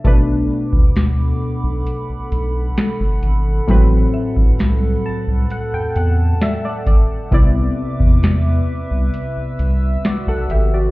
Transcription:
0.04 analog synth bass B1, synth keys B2 A3 D4 B4, analog synth pad A4 F#5 B5 D6, synth pluck A5, kick, closed hi-hat
0.73 analog synth bass D2, kick
0.96 analog synth bass D2, snare, closed hi-hat
1.64 analog synth bass B1
1.87 closed hi-hat
2.09 analog synth bass B1
2.32 analog synth bass B1, closed hi-hat
2.77 snare, closed hi-hat
3.00 analog synth bass G1
3.23 analog synth bass G#1, closed hi-hat
3.68 analog synth bass A1, synth keys A2 F#3 C4 B4, kick, closed hi-hat
4.14 synth pluck E5
4.37 analog synth bass B1, kick
4.59 analog synth bass C2, snare, closed hi-hat
5.06 synth keys A5
5.28 analog synth bass C2
5.50 synth keys F#5, analog synth pad A5, closed hi-hat
5.73 analog synth bass E2, synth keys G5
5.96 analog synth bass E2, synth keys F#5, closed hi-hat
6.41 synth pluck D5, synth keys E5, snare, closed hi-hat
6.65 synth keys D5
6.69 synth pluck F#5
6.86 synth keys D5, kick, closed hi-hat
7.31 analog synth bass C2, synth keys C3 B3 E4 D5, analog synth pad B4 E5 D6, kick, closed hi-hat
8.00 analog synth bass E2, kick
8.23 analog synth bass E2, snare, closed hi-hat
8.91 analog synth bass C2
9.14 analog synth pad E6, closed hi-hat
9.37 analog synth bass C2
9.59 analog synth bass C2, closed hi-hat
10.05 synth keys F#4 D5, snare, closed hi-hat
10.27 analog synth bass B1, synth keys A4 F#5
10.50 analog synth bass G#1, synth keys G4 E5, closed hi-hat
10.74 synth keys F#4 D5

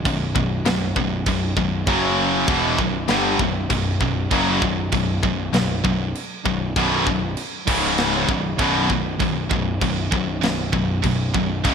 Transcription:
0.05 picked electric bass B0, distorted electric guitar B1 F#2, kick, crash
0.35 picked electric bass B0, distorted electric guitar B1 F#2, kick
0.65 picked electric bass B0, distorted electric guitar B1 F#2, snare, crash
0.96 picked electric bass B0, distorted electric guitar B1 F#2, kick
1.26 picked electric bass B0, distorted electric guitar B1 F#2, kick, crash
1.56 picked electric bass B0, distorted electric guitar B1 F#2, kick
1.87 picked electric bass F#1, distorted electric guitar F#2 C#3 F#3, kick, crash
2.48 picked electric bass E1, distorted electric guitar E2 B2 E3, kick, crash
2.78 picked electric bass B0, distorted electric guitar B1 F#2, kick
3.08 picked electric bass G1, distorted electric guitar G2 D3 G3, snare, crash
3.39 picked electric bass B0, distorted electric guitar B1 F#2, kick
3.70 picked electric bass B0, distorted electric guitar B1 F#2, kick, crash
4.00 picked electric bass B0, distorted electric guitar B1 F#2, kick
4.31 picked electric bass F#1, distorted electric guitar F#2 C#3 F#3, kick, crash
4.62 picked electric bass B0, distorted electric guitar B1 F#2, kick
4.92 picked electric bass B0, distorted electric guitar B1 F#2, kick, crash
5.23 picked electric bass B0, distorted electric guitar B1 F#2, kick
5.53 picked electric bass B0, distorted electric guitar B1 F#2, snare, crash
5.84 picked electric bass B0, distorted electric guitar B1 F#2, kick
6.15 crash
6.45 picked electric bass B0, distorted electric guitar B1 F#2, kick
6.76 picked electric bass B0, distorted electric guitar B1 F#2 B2, kick, crash
7.07 picked electric bass B0, distorted electric guitar B1 F#2, kick
7.37 crash
7.67 picked electric bass C#1, distorted electric guitar C#2 G#2 C#3, kick, crash
7.98 snare, crash
8.29 picked electric bass B0, distorted electric guitar B1 F#2, kick
8.59 picked electric bass B0, distorted electric guitar B1 F#2 B2, kick, crash
8.90 picked electric bass B0, distorted electric guitar B1 F#2, kick
9.20 picked electric bass B0, distorted electric guitar B1 F#2, kick, crash
9.51 picked electric bass B0, distorted electric guitar B1 F#2, kick
9.81 picked electric bass B0, distorted electric guitar B1 F#2, kick, crash
10.12 picked electric bass B0, distorted electric guitar B1 F#2, kick
10.42 picked electric bass B0, distorted electric guitar B1 F#2, snare, crash
10.73 picked electric bass B0, distorted electric guitar B1 F#2, kick
11.04 picked electric bass B0, distorted electric guitar B1 F#2, kick, crash
11.34 picked electric bass B0, distorted electric guitar B1 F#2, kick
11.64 picked electric bass C#1, distorted electric guitar C#2 G#2 C#3, kick, crash

